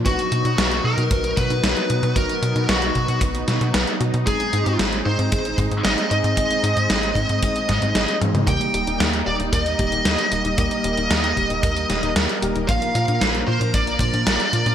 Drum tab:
HH |xxxxxx-xxxxxxxxx|xxxxxxxxxxxxxxxx|xxxxxx-xxxxxxxxx|xxxxxxxxxxxxxxxx|
SD |----o-------o---|----o-----o-o---|----o-------o---|----o-----o-o---|
T1 |----------------|----------------|----------------|--------------o-|
T2 |----------------|----------------|----------------|---------------o|
BD |o-------o-o-----|o-----o-o-------|o-------o-o-----|o-----o-o-o-----|

HH |xxxxxx-xxxxxxxxx|xxxxxxxxxxxxxxxx|xxxxxx-xxxxxxxxx|
SD |----o-------o---|----o-----o-o---|----o-------o---|
T1 |----------------|----------------|----------------|
T2 |----------------|----------------|----------------|
BD |o-------o-o-----|o-----o-o-------|o-------o-o-----|